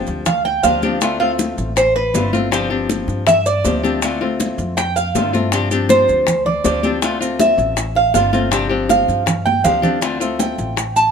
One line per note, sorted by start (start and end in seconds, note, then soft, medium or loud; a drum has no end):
0.00 0.26 F3 medium
0.00 0.26 C4 medium
0.00 0.26 D4 medium
0.00 0.25 G4 medium
0.07 0.60 D2 loud
0.07 high bongo soft
0.07 maracas soft
0.26 0.45 F5 medium
0.26 muted nylon-string guitar stroke medium
0.26 high bongo medium
0.26 high conga soft
0.26 low conga medium
0.26 maracas medium
0.45 0.63 G5 loud
0.45 high bongo soft
0.45 high conga soft
0.63 1.52 D2 medium
0.63 0.82 F3 medium
0.63 0.82 C4 medium
0.63 0.82 D4 medium
0.63 0.82 G4 medium
0.63 1.16 F5 medium
0.63 high bongo soft
0.63 low bongo medium
0.63 high conga medium
0.63 maracas medium
0.83 1.01 F3 medium
0.83 1.01 C4 medium
0.83 1.01 D4 medium
0.83 1.01 G4 medium
0.83 high conga medium
0.83 maracas soft
1.01 1.20 D3 medium
1.01 1.20 A3 medium
1.01 1.19 C4 medium
1.01 1.19 F4 medium
1.01 high bongo medium
1.01 high conga soft
1.01 maracas medium
1.20 1.75 A3 medium
1.20 1.76 C4 medium
1.20 1.76 F4 medium
1.20 1.31 F5 medium
1.20 high bongo soft
1.20 high conga soft
1.39 high bongo medium
1.39 high conga medium
1.39 maracas medium
1.58 2.11 A1 loud
1.58 high bongo soft
1.58 high conga soft
1.58 maracas soft
1.76 1.95 C5 medium
1.76 muted nylon-string guitar stroke medium
1.76 high bongo medium
1.76 high conga soft
1.76 maracas medium
1.96 2.31 B4 medium
1.96 high bongo soft
1.96 high conga soft
2.14 3.02 G1 medium
2.14 2.32 D3 medium
2.14 2.33 A3 medium
2.14 2.33 C4 medium
2.14 2.32 F4 medium
2.14 high bongo soft
2.14 low bongo medium
2.14 high conga medium
2.14 maracas medium
2.33 2.52 A3 medium
2.33 2.51 C4 medium
2.33 2.51 F4 medium
2.33 high conga medium
2.33 maracas soft
2.51 2.70 C3 medium
2.51 2.70 F3 medium
2.51 2.70 C4 medium
2.51 2.69 D4 medium
2.51 2.69 G4 medium
2.51 high bongo medium
2.51 high conga soft
2.51 maracas medium
2.70 3.27 F3 medium
2.70 3.27 C4 medium
2.70 3.27 D4 medium
2.70 3.26 G4 medium
2.70 high bongo soft
2.70 high conga soft
2.89 high bongo medium
2.89 high conga medium
2.89 maracas medium
3.08 3.61 G2 medium
3.08 high bongo soft
3.08 maracas soft
3.27 3.45 E5 loud
3.27 muted nylon-string guitar stroke medium
3.27 high bongo medium
3.27 high conga soft
3.27 low conga medium
3.27 maracas medium
3.46 3.81 D5 medium
3.46 high bongo soft
3.46 high conga soft
3.46 maracas medium
3.65 4.53 D2 medium
3.65 3.83 F3 medium
3.65 3.83 C4 medium
3.65 3.82 D4 medium
3.65 3.82 G4 medium
3.65 high bongo soft
3.65 low bongo medium
3.65 high conga medium
3.65 maracas medium
3.83 4.02 F3 medium
3.83 4.02 C4 medium
3.83 4.02 D4 medium
3.83 4.02 G4 medium
3.83 high conga medium
3.83 maracas soft
4.02 4.21 D3 medium
4.02 4.21 A3 medium
4.02 4.20 C4 medium
4.02 4.20 F4 medium
4.02 high bongo medium
4.02 high conga soft
4.02 maracas medium
4.21 4.76 A3 medium
4.21 4.77 C4 medium
4.21 4.77 F4 medium
4.21 high bongo soft
4.21 high conga soft
4.40 high bongo medium
4.40 high conga medium
4.40 maracas medium
4.58 5.11 F2 loud
4.58 high bongo soft
4.58 high conga soft
4.58 maracas soft
4.77 4.96 G5 loud
4.77 muted nylon-string guitar stroke medium
4.77 high bongo medium
4.77 high conga soft
4.77 maracas medium
4.96 5.31 F5 medium
4.96 high bongo soft
4.96 high conga soft
4.96 maracas medium
5.15 6.03 G2 medium
5.15 5.33 D3 medium
5.15 5.34 A3 medium
5.15 5.33 C4 medium
5.15 5.32 F4 medium
5.15 high bongo soft
5.15 low bongo medium
5.15 high conga medium
5.15 maracas medium
5.33 5.52 A3 medium
5.33 5.52 C4 medium
5.33 5.52 F4 medium
5.33 high conga medium
5.33 maracas soft
5.52 5.71 C3 medium
5.52 5.71 F3 medium
5.52 5.71 C4 medium
5.52 5.71 D4 medium
5.52 5.70 G4 medium
5.52 high bongo medium
5.52 high conga soft
5.52 maracas medium
5.71 6.27 F3 medium
5.71 6.27 C4 medium
5.71 6.27 D4 medium
5.71 6.27 G4 medium
5.71 high bongo soft
5.71 high conga soft
5.71 maracas medium
5.89 6.42 C5 medium
5.89 high bongo medium
5.89 high conga medium
5.89 maracas medium
6.08 6.61 D2 loud
6.08 high bongo soft
6.08 maracas soft
6.27 muted nylon-string guitar stroke medium
6.27 high bongo medium
6.27 high conga soft
6.27 low conga medium
6.27 maracas medium
6.46 6.64 D5 medium
6.46 high bongo soft
6.46 high conga soft
6.46 low conga medium
6.64 7.53 D2 medium
6.64 6.83 F3 medium
6.64 6.83 C4 medium
6.64 6.83 D4 medium
6.64 6.82 G4 medium
6.64 7.00 D5 medium
6.64 high bongo soft
6.64 low bongo medium
6.64 high conga medium
6.64 maracas medium
6.83 7.02 F3 medium
6.83 7.02 C4 medium
6.83 7.02 D4 medium
6.83 7.02 G4 medium
6.83 high conga medium
6.83 maracas soft
7.02 7.21 D3 medium
7.02 7.21 A3 medium
7.02 7.20 C4 medium
7.02 7.19 F4 medium
7.02 high bongo medium
7.02 high conga soft
7.02 maracas medium
7.20 7.76 A3 medium
7.20 7.77 C4 medium
7.20 7.78 F4 medium
7.20 high bongo soft
7.20 high conga soft
7.20 maracas medium
7.40 7.92 E5 medium
7.40 high bongo medium
7.40 high conga medium
7.40 maracas medium
7.58 8.11 A1 loud
7.58 high bongo soft
7.58 high conga soft
7.58 maracas soft
7.77 muted nylon-string guitar stroke medium
7.77 high bongo medium
7.77 high conga soft
7.77 maracas medium
7.95 8.13 F5 medium
7.95 high bongo soft
7.95 high conga soft
8.14 9.02 G1 medium
8.14 8.33 D3 medium
8.14 8.33 A3 medium
8.14 8.32 C4 medium
8.14 8.32 F4 medium
8.14 8.50 F5 medium
8.14 high bongo soft
8.14 low bongo medium
8.14 high conga medium
8.14 maracas medium
8.33 8.52 A3 medium
8.33 8.51 C4 medium
8.33 8.51 F4 medium
8.33 high conga medium
8.33 maracas soft
8.51 8.70 C3 medium
8.51 8.70 F3 medium
8.51 8.70 C4 medium
8.51 8.69 D4 medium
8.51 8.68 G4 medium
8.51 high bongo medium
8.51 high conga soft
8.51 maracas medium
8.69 9.26 F3 medium
8.69 9.26 C4 medium
8.69 9.26 D4 medium
8.69 9.25 G4 medium
8.69 high bongo soft
8.69 high conga soft
8.89 9.42 F5 medium
8.89 high bongo medium
8.89 high conga medium
8.89 maracas medium
9.08 9.61 G2 medium
9.08 high bongo soft
9.08 maracas soft
9.26 muted nylon-string guitar stroke medium
9.26 high bongo medium
9.26 high conga soft
9.26 low conga medium
9.26 maracas medium
9.46 9.64 G5 loud
9.46 high bongo soft
9.46 high conga medium
9.64 10.53 D2 medium
9.64 9.83 F3 medium
9.64 9.82 C4 medium
9.64 9.82 D4 medium
9.64 9.81 G4 medium
9.64 9.99 F5 medium
9.64 high bongo soft
9.64 low bongo medium
9.64 low conga medium
9.64 maracas medium
9.82 10.01 F3 medium
9.82 10.01 C4 medium
9.82 10.01 D4 medium
9.82 10.01 G4 medium
9.82 low conga loud
9.82 maracas soft
10.01 10.20 D3 medium
10.01 10.20 A3 medium
10.01 10.20 C4 medium
10.01 10.19 F4 medium
10.01 high bongo medium
10.01 high conga soft
10.01 maracas medium
10.20 10.76 A3 medium
10.20 10.77 C4 medium
10.20 10.77 F4 medium
10.20 high bongo soft
10.20 high conga soft
10.20 maracas medium
10.39 10.92 G5 medium
10.39 high bongo medium
10.39 high conga medium
10.39 maracas medium
10.58 11.11 A1 loud
10.58 high bongo soft
10.58 high conga soft
10.58 maracas soft
10.76 muted nylon-string guitar stroke medium
10.76 high bongo medium
10.76 high conga soft
10.76 maracas medium
10.96 11.11 A5 loud
10.96 high bongo soft
10.96 high conga soft
10.96 maracas medium